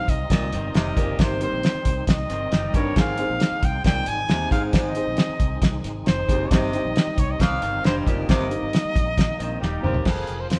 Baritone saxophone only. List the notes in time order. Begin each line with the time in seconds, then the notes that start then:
0.30 A#2
0.74 C3
0.96 A#2
1.19 C3
2.74 G2
2.97 G#2
3.85 A#2
4.30 C3
4.52 G#2
4.74 G#2
6.29 D#2
6.52 C3
7.41 F2
7.84 G2
8.06 A#2
8.29 C3
9.84 D#2
10.06 F2